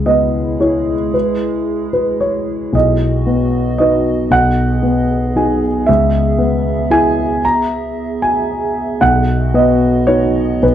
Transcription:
0.00 1.09 C#2 soft
0.00 2.70 G#3 medium
0.00 2.70 E4 medium
0.00 2.70 G#4 soft
0.06 0.92 B3 soft
0.06 0.56 D#5 medium
0.60 2.70 E4 soft
0.60 2.70 G#4 soft
0.60 1.10 C#5 soft
1.14 1.90 B4 soft
1.93 2.18 B4 soft
2.21 2.70 C#5 soft
2.73 4.27 B1 soft
2.73 8.99 B3 medium
2.73 4.32 F#4 medium
2.73 5.88 D#5 soft
2.73 3.76 D#5 medium
3.27 4.11 B3 soft
3.78 4.28 D#4 soft
3.78 4.28 B4 soft
3.78 4.28 D#5 medium
4.31 5.83 B1 soft
4.31 9.00 G#4 medium
4.31 5.32 F#5 medium
4.83 5.67 B3 soft
5.36 5.84 D#4 soft
5.36 5.84 G#4 soft
5.36 5.61 G#5 soft
5.86 7.40 C#2 soft
5.86 6.87 E5 medium
5.86 9.01 E5 soft
6.38 7.22 B3 soft
6.90 8.96 E4 soft
6.90 8.96 G#4 soft
6.90 7.40 G#5 medium
7.45 8.18 A#5 medium
8.22 8.97 G#5 medium
8.99 10.59 B1 soft
8.99 10.75 B3 medium
8.99 10.62 F#4 medium
8.99 10.75 D#5 medium
8.99 9.50 F#5 medium
9.54 10.40 B3 soft
9.54 10.04 D#5 medium
10.07 10.59 D#4 soft
10.07 10.59 B4 soft
10.07 10.59 C#5 medium
10.62 10.75 B1 soft
10.62 10.75 G#4 medium
10.62 10.75 B4 medium

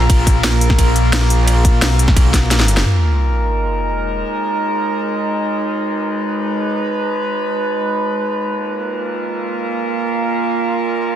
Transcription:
0.00 2.81 A#3 medium
0.00 2.81 F4 medium
0.00 2.81 A#4 medium
0.10 0.43 A#1 loud
0.10 kick loud
0.10 closed hi-hat medium
0.10 ride medium
0.27 kick loud
0.27 closed hi-hat medium
0.44 1.81 A#1 loud
0.44 snare loud
0.44 closed hi-hat medium
0.44 ride medium
0.61 closed hi-hat loud
0.70 kick loud
0.70 snare medium
0.79 kick medium
0.79 closed hi-hat medium
0.79 ride medium
0.96 closed hi-hat medium
1.13 snare loud
1.13 closed hi-hat medium
1.13 ride medium
1.22 snare soft
1.30 closed hi-hat loud
1.48 closed hi-hat medium
1.48 ride medium
1.65 kick loud
1.65 closed hi-hat loud
1.82 2.84 B1 loud
1.82 snare loud
1.82 closed hi-hat medium
1.82 ride medium
1.99 closed hi-hat loud
2.08 kick loud
2.08 snare medium
2.16 kick loud
2.16 closed hi-hat medium
2.16 ride medium
2.34 kick medium
2.34 snare medium
2.34 closed hi-hat loud
2.51 snare medium
2.51 closed hi-hat medium
2.51 ride medium
2.60 snare medium
2.68 closed hi-hat loud
2.77 snare medium
2.85 8.33 G#3 medium
2.85 8.33 D#4 medium
2.85 5.59 A#4 medium
2.85 sub drop medium
5.61 8.34 B4 medium
8.37 11.15 A#3 medium
8.37 11.15 F4 medium
8.37 11.15 A#4 medium

